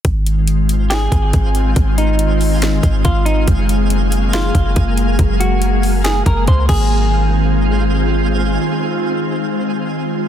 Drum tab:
CC |--------|--------|--------|-------x|
HH |xxxxxxxx|xxxoxxxx|xxxxxxxx|xxxoxxx-|
SD |----o---|----o---|----o---|----o---|
BD |o----oo-|o----oo-|o----oo-|o----ooo|

CC |--------|--------|
HH |--------|--------|
SD |--------|--------|
BD |--------|--------|